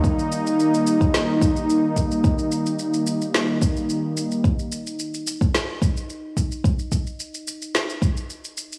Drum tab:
SH |xxxxxxxxx-xxx-xx|xxxxxxxxx-xxx-xx|xxxxxxxxx-xxx-xx|xxxxxxxxxxxxxxxx|
SD |--------o-------|--------o-------|--------o-------|--------o-------|
BD |o------o--o---o-|o---------o-----|o------o--o---o-|o-o-------o-----|